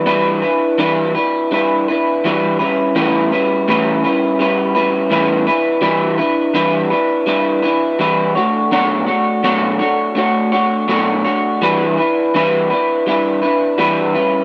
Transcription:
X:1
M:4/4
L:1/8
Q:1/4=83
K:Edor
V:1 name="Clean electric guitar"
[E,G,DEB] [DEB] [E,G,DEB] [DEB] [G,DEB] [DEB] [E,G,DEB] [G,CEB] | [A,,E,G,CEB] [G,CEB] [A,,E,G,CEB] [G,CEB] [G,CEB] [G,CEB] [A,,E,G,CEB] [DEB] | [E,G,DEB] [DEB] [E,G,DEB] [DEB] [G,DEB] [DEB] [E,G,DEB] [A,DFc] | [B,,F,A,DFc] [A,DFc] [B,,F,A,DFc] [A,DFc] [A,DFc] [A,DFc] [B,,F,A,DFc] [A,DFc] |
[E,G,DEB] [DEB] [E,G,DEB] [DEB] [G,DEB] [DEB] [E,G,DEB] [G,CEB] |]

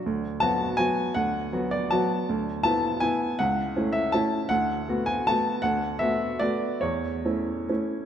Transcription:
X:1
M:3/4
L:1/8
Q:1/4=160
K:Bdor
V:1 name="Upright piano"
z2 a2 g2 | f3 d a2 | z2 a2 g2 | f3 e a2 |
f3 g a2 | f2 e2 d2 | c6 |]
V:2 name="Upright piano"
D,,2 [F,B,F]2 [F,B,F]2 | D,,2 [F,B,F]2 [F,B,F]2 | D,,2 [B,E]2 [B,E]2 | C,,2 [A,CE]2 [A,CE]2 |
D,,2 [A,B,F]2 [A,B,F]2 | D,,2 [A,B,F]2 [A,B,F]2 | E,,2 [A,CE]2 [A,CE]2 |]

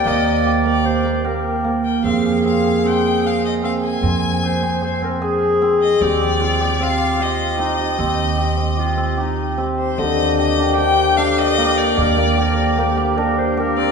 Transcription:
X:1
M:5/4
L:1/8
Q:1/4=151
K:Eb
V:1 name="Violin"
e2 z d2 z4 g | f2 f2 g2 f e f a- | a4- a z4 e | d4 f2 e4- |
e8 z c | e2 e2 g2 f e2 d- | d4- d z4 d |]
V:2 name="Clarinet"
d4 c2 B3 z | A8- A2- | A z c2 c B A4 | G2 F6 E2 |
G3 z F2 E2 G2 | G8- G2 | B2 B2 G2 B c B2 |]
V:3 name="Hammered dulcimer"
B,2 G B, G B, G2 B,2 | C A C A C2 A2 C A | C2 A C A C A2 C2 | C G C G C2 G2 C G |
C2 G C G C G2 C2 | D,2 G D G2 D G B,2 | G B, G2 B, G D2 G C |]
V:4 name="Harmonium"
z8 z2 | z8 z2 | z8 z2 | z8 z2 |
z8 z2 | [D,B,G]8- [D,B,G]2- | [D,B,G]8- [D,B,G]2 |]
V:5 name="Upright bass" clef=bass
E,,8- E,,2 | F,,8- F,,2 | F,,8- F,,2 | E,,8- E,,2 |
E,,8- E,,2 | E,,8- E,,2 | E,,8- E,,2 |]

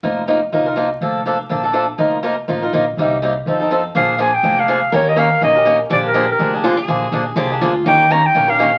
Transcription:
X:1
M:4/4
L:1/8
Q:"Swing" 1/4=246
K:Fmix
V:1 name="Clarinet"
z8 | z8 | z8 | z8 |
[K:Bbmix] f2 a g2 f3 | _d e f2 e3 z | d B2 B2 z3 | z8 |
g2 b g2 f3 |]
V:2 name="Steel-string acoustic guitar"
z8 | z8 | z8 | z8 |
[K:Bbmix] A8 | B8 | G6 F A- | A4 G2 F2 |
E8 |]
V:3 name="Steel-string acoustic guitar"
[F,B,EFB] z [F,B,EFB] z [F,B,EFB] [EFB] [F,B,EFB] z | [F,B,DA] z [F,B,DA] z [F,B,DA] [B,DA] [F,B,DA] z | [F,B,EFB] z [F,B,EFB] z [F,B,EFB] [EFB] [F,B,EFB] z | [C,G,B,EG] z [C,G,B,EG] z [F,CEA] [CEA] [F,CEA] z |
[K:Bbmix] [D,F,B,DA] z [D,F,B,DA] z [D,F,B,DA] [B,DA] [D,F,B,DA] z | [E,B,_DGB] z [E,B,DGB] z [E,B,DGB] [DGB] [E,B,DGB] z | [D,F,B,DA] z [D,F,B,DA] z [D,F,B,DA] [B,DA] [D,F,B,DA] z | [D,F,B,DA] z [D,F,B,DA] z [D,F,B,DA] [B,DA] [D,F,B,DA] z |
[E,B,_DGB] z [E,B,DGB] z [E,B,DGB] [DGB] [E,B,DGB] z |]
V:4 name="Upright bass" clef=bass
F,,,4 C,,4 | F,,,4 B,,,4 | F,,,4 A,,,2 B,,,2 | C,,4 F,,4 |
[K:Bbmix] B,,,4 F,,,4 | E,,4 B,,,4 | B,,,4 F,,,4 | B,,,2 B,,,2 C,,2 D,,2 |
E,,4 B,,,4 |]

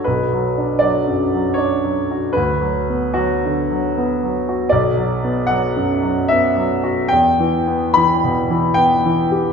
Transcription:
X:1
M:3/4
L:1/8
Q:1/4=75
K:Bm
V:1 name="Grand piano"
B2 d2 c2 | B2 F2 z2 | d2 f2 e2 | g2 b2 g2 |]
V:2 name="Grand piano" clef=bass
(3B,,, F, D (3F, F,, F, (3D F, F | (3D,, F, B, (3F, D, F, (3B, F, F | (3B,,, F, B, (3F, F,, F, (3B, F, F | (3E,, E, B, (3E, B,, E, (3B, E, G |]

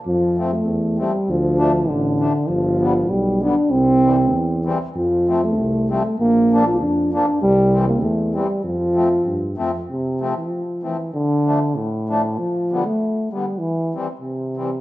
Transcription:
X:1
M:2/4
L:1/16
Q:"Swing" 1/4=97
K:F
V:1 name="Accordion"
z2 [F,A,C]2 z2 [F,A,C]2 | z2 [F,A,D]2 z2 [F,A,D]2 | z2 [D,G,=B,]2 z2 [D,G,B,]2 | z2 [E,G,C]2 z2 [E,G,C]2 |
z2 [F,A,C]2 z2 [F,A,C]2 | z2 [F,B,D]2 z2 [F,B,D]2 | z2 [E,G,C]2 z2 [E,G,C]2 | z2 [F,A,C]2 z2 [F,A,C]2 |
z2 [F,A,C]2 z2 [F,A,C]2 | z2 [F,A,D]2 z2 [F,A,D]2 | z2 [D,G,=B,]2 z2 [D,G,B,]2 | z2 [E,G,C]2 z2 [E,G,C]2 |]
V:2 name="Euphonium" clef=bass
F,3 A,3 G,2 | F,4 D,4 | F,4 G,2 D2 | C6 z2 |
F,3 A,3 G, A, | B,3 F D2 D2 | G,3 B, A,2 G,2 | F,6 z2 |
C,3 F,3 E,2 | D,4 A,,4 | F,3 A,3 G,2 | E,2 z2 C,4 |]
V:3 name="Tuba" clef=bass
F,,4 E,,4 | D,,4 A,,,4 | G,,,4 =B,,,4 | C,,4 E,,4 |
F,,4 C,,4 | B,,,4 F,,4 | C,,4 E,,4 | F,,4 G,,2 F,,2 |
z8 | z8 | z8 | z8 |]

